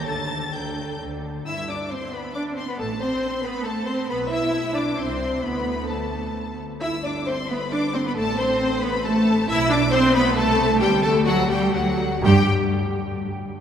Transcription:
X:1
M:3/4
L:1/16
Q:1/4=134
K:G
V:1 name="Violin section"
a'4 g'4 z4 | e'2 d'2 c'2 b2 d'2 c' b | a2 c'4 b2 a2 c'2 | b2 e'4 d'2 c'4 |
b4 a6 z2 | e'2 d'2 c'2 b2 d'2 c' b | a2 c'4 b2 a4 | e'2 d'2 c'2 b2 a4 |
g2 a2 f2 g2 f4 | g2 z8 z2 |]
V:2 name="Violin section"
a4 g4 z4 | e2 d2 c2 B2 d2 c B | A2 c4 B2 A2 c2 | B2 e4 d2 c4 |
B4 A6 z2 | e2 d2 c2 B2 d2 c B | A2 c4 B2 A4 | e2 d2 c2 B2 A4 |
G2 A2 F2 G2 F4 | G2 z8 z2 |]
V:3 name="Viola section"
A8- A2 z2 | E2 D2 C2 B,2 D2 C B, | A,2 C4 B,2 A,2 C2 | B,2 E4 D2 C4 |
B,4 A,6 z2 | E2 D2 C2 B,2 D2 C B, | A,2 C4 B,2 A,4 | E2 D2 C2 B,2 A,4 |
G,2 A,2 F,2 G,2 F,4 | G2 z8 z2 |]
V:4 name="Cello section"
D,4 D,4 D,4 | E2 D2 C2 B,2 D2 C B, | A,2 C4 B,2 A,2 C2 | B,2 E4 D2 C4 |
B,4 A,6 z2 | E2 D2 C2 B,2 D2 C B, | A,2 C4 B,2 A,4 | E2 D2 C2 B,2 A,4 |
G,2 A,2 F,2 G,2 F,4 | G,2 z8 z2 |]
V:5 name="Double bass section" clef=bass
D,,4 D,,4 D,,4 | G,,4 z8 | A,,,4 z8 | B,,,8 C,,4 |
D,,8- D,,2 z2 | G,,,12 | A,,,12 | B,,,8 C,,4 |
D,,8 D,,2 z2 | G,,2 z8 z2 |]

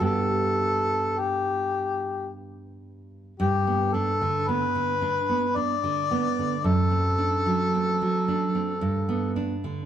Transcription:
X:1
M:3/4
L:1/16
Q:1/4=55
K:G
V:1 name="Harmonica"
A4 G4 z4 | G2 A2 B4 d4 | A8- A2 z2 |]
V:2 name="Nylon-string guitar"
[G,,B,G]12 | G,, B, D D, B, D, D B, D D, B, D, | F,, C D F, C F, D C G,, B, D D, |]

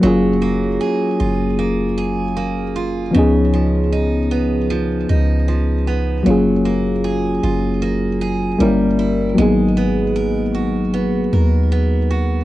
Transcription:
X:1
M:4/4
L:1/8
Q:"Swing 16ths" 1/4=77
K:F#
V:1 name="FM electric piano"
[F,A,CEG]8 | [E,B,CDG]8 | [F,A,CEG]6 [=G,_B,_D=E_B]2 | [F,A,B,DG]8 |]
V:2 name="Steel-string acoustic guitar"
F, A, G E A, G A, E | C, E, D B, E, D E, B, | F, A, G E A, G =G, =E | G, B, A F B, A B, F |]
V:3 name="808-style bass" clef=bass
F,,,2 z F,,,4- F,,, | C,,4- C,, C,,3 | F,,,3 F,,,3 =G,,,2 | G,,,4- G,,, D,,3 |]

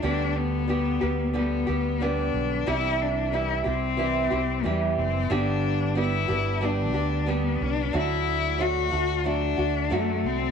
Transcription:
X:1
M:4/4
L:1/8
Q:"Swing 16ths" 1/4=91
K:G
V:1 name="Cello"
D B,3 B,2 D2 | E D E C3 G, C | D2 E2 D2 B, D | E2 F2 D2 A, C |]
V:2 name="Nylon-string guitar"
[D,G,B,G]2 [D,G,B,G] [G,B,G] [D,G,B,G] [G,B,G] [D,G,B,G]2 | [C,E,G,EG]2 [E,G,EG] [G,EG] [E,G,EG] [G,EG] [E,G,EG]2 | [G,,D,G,B,DG]2 [G,B,DG] [G,B,DG] [G,B,DG] [G,B,DG] [G,B,DG]2 | [D,F,A,DF]2 [F,A,DF] [A,DF] [F,A,DF] [A,DF] [F,A,DF]2 |]
V:3 name="Fretless electric bass" clef=bass
D,,3 D,,2 D,,2 B,,, | C,,3 C,,2 C,, E,, F,,, | G,,,3 G,,,2 D,,2 C,, | D,,3 D,,2 D,, F,, C,, |]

